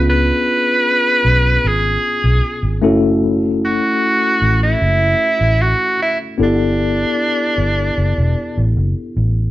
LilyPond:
<<
  \new Staff \with { instrumentName = "Tenor saxophone" } { \time 4/4 \key fis \phrygian \tempo 4 = 76 b'2 gis'4. r8 | r8 fis'4~ fis'16 e'4~ e'16 fis'8 e'8 | d'2. r4 | }
  \new Staff \with { instrumentName = "Tine electric piano" } { \time 4/4 \key fis \phrygian <b cis' d' eis' gis'>2.~ <b cis' d' eis' gis'>8 <a cis' e' fis' a'>8~ | <a cis' e' fis' a'>2.~ <a cis' e' fis' a'>8 r8 | <b d' e' g' a'>1 | }
  \new Staff \with { instrumentName = "Fingered electric bass" } { \clef bass \time 4/4 \key fis \phrygian cis,8 r4 b,,8 gis,,8 r16 b,,16 r16 gis,,16 fis,,8~ | fis,,4 r8 a,,8 fis,,8 r16 a,,8 r8. | g,,4 r8 g,,8 fis,,16 e,,16 r16 a,,16 fis,,16 r16 a,,8 | }
>>